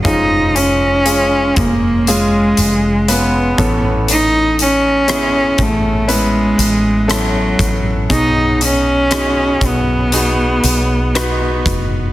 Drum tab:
HH |xxxxxxxx|xxxxxxxx|xxxxxxxx|
SD |--------|--r---r-|--r---r-|
BD |o--o---o|---o---o|o--o---o|